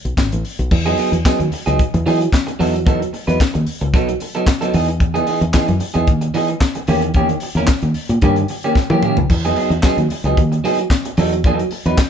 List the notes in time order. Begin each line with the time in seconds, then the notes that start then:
0.05 B1, closed hi-hat
0.17 G#1, kick, snare, clap
0.32 A1, closed hi-hat
0.45 open hi-hat
0.59 B1, closed hi-hat
0.71 E2, muted clean electric guitar stroke, kick, crash
0.86 F#3 B3 D#4 G#4, closed hi-hat
0.98 F#3 B3 D#4 G#4, open hi-hat
1.12 E2, muted clean electric guitar stroke, closed hi-hat
1.25 F#3 B3 D#4 G#4, kick, snare, clap
1.40 D#2, muted clean electric guitar stroke, closed hi-hat
1.52 muted clean electric guitar stroke, open hi-hat
1.66 C#2 F#3 B3 D#4 G#4, closed hi-hat
1.79 kick, closed hi-hat
1.94 E2, muted clean electric guitar stroke, closed hi-hat
2.06 E3 F#3 B3 D#4 G#4, open hi-hat
2.20 muted clean electric guitar stroke, closed hi-hat
2.33 kick, snare, clap
2.47 muted clean electric guitar stroke, closed hi-hat
2.59 E2 F#3 B3 D#4 A4, open hi-hat
2.74 muted clean electric guitar stroke, closed hi-hat
2.86 F#3 B3 D#4 A4, kick, closed hi-hat
3.00 muted clean electric guitar stroke, closed hi-hat
3.13 muted clean electric guitar stroke, open hi-hat
3.27 E2 F#3 B3 D#4 B4, closed hi-hat
3.40 muted clean electric guitar stroke, kick, snare, clap
3.54 D#2, muted clean electric guitar stroke, closed hi-hat
3.67 open hi-hat
3.81 C#2, muted clean electric guitar stroke, closed hi-hat
3.94 B1 F#3 B3 D#4 A4, kick, snare, closed hi-hat
4.09 muted clean electric guitar stroke, closed hi-hat
4.20 muted clean electric guitar stroke, open hi-hat
4.35 F#3 B3 D#4 A4, closed hi-hat
4.47 muted clean electric guitar stroke, kick, snare, clap
4.61 F#3 B3 D#4 A4, closed hi-hat
4.74 E2 E3 B3 D#4 G#4, open hi-hat
4.88 muted clean electric guitar stroke, closed hi-hat
5.00 muted clean electric guitar stroke, kick, closed hi-hat
5.14 E3 B3 D#4 G#4, closed hi-hat
5.26 E3 B3 D#4 G#4, open hi-hat
5.41 E2, muted clean electric guitar stroke, closed hi-hat
5.54 E3 B3 D#4 G#4, kick, snare, clap
5.67 F#2, muted clean electric guitar stroke, closed hi-hat
5.80 muted clean electric guitar stroke, open hi-hat
5.94 E2 E3 B3 D#4 G#4, closed hi-hat
6.07 D#2, kick, closed hi-hat
6.21 muted clean electric guitar stroke, closed hi-hat
6.34 E3 B3 D#4 G#4, open hi-hat
6.48 muted clean electric guitar stroke, closed hi-hat
6.61 kick, snare, clap
6.75 muted clean electric guitar stroke, closed hi-hat
6.87 E2 D#3 A#3 C#4 G4, open hi-hat
7.02 muted clean electric guitar stroke, closed hi-hat
7.14 D#3 A#3 C#4 G4, kick, closed hi-hat
7.29 muted clean electric guitar stroke, closed hi-hat
7.40 muted clean electric guitar stroke, open hi-hat
7.55 E2 D#3 A#3 C#4 A#4, closed hi-hat
7.67 muted clean electric guitar stroke, kick, snare, clap
7.82 D#2, muted clean electric guitar stroke, closed hi-hat
7.94 open hi-hat
8.09 A#2, muted clean electric guitar stroke, closed hi-hat
8.22 G2 D#3 A#3 C#4 G4, kick, closed hi-hat
8.36 muted clean electric guitar stroke, closed hi-hat
8.48 muted clean electric guitar stroke, open hi-hat
8.63 D#3 A#3 C#4 G4, closed hi-hat
8.75 muted clean electric guitar stroke, kick, snare
8.90 D#3 E3 A#3 C#4 G4, high tom
9.03 D#3 A#3 C#4 G4, mid tom
9.17 C#2, muted clean electric guitar stroke, floor tom
9.30 E2, muted clean electric guitar stroke, kick, crash
9.45 F#3 B3 D#4 G#4, closed hi-hat
9.56 F#3 B3 D#4 G#4, open hi-hat
9.70 E2, muted clean electric guitar stroke, closed hi-hat
9.83 F#3 B3 D#4 G#4, kick, snare, clap
9.97 D#2, muted clean electric guitar stroke, closed hi-hat
10.10 muted clean electric guitar stroke, open hi-hat
10.24 C#2 F#3 B3 D#4 G#4, closed hi-hat
10.37 D#2, kick, closed hi-hat
10.52 muted clean electric guitar stroke, closed hi-hat
10.64 F#3 B3 D#4 G#4, open hi-hat
10.79 muted clean electric guitar stroke, closed hi-hat
10.90 kick, snare, clap
11.05 muted clean electric guitar stroke, closed hi-hat
11.17 E2 F#3 B3 D#4 A4, open hi-hat
11.32 muted clean electric guitar stroke, closed hi-hat
11.44 F#3 B3 D#4 A4, kick, closed hi-hat
11.59 muted clean electric guitar stroke, closed hi-hat
11.71 muted clean electric guitar stroke, open hi-hat
11.86 E2 F#3 B3 D#4 B4, closed hi-hat
11.98 muted clean electric guitar stroke, kick, snare, clap